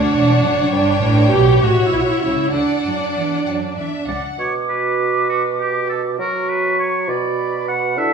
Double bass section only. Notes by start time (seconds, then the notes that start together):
Already playing: D2
0.14 E1
0.43 F#1
0.72 G1
1.02 A1
1.32 B1
1.61 A1
1.91 B1
2.22 C#2
2.53 D2
2.84 F#2
3.15 E2
3.45 F#2
3.76 E2
4.07 C#2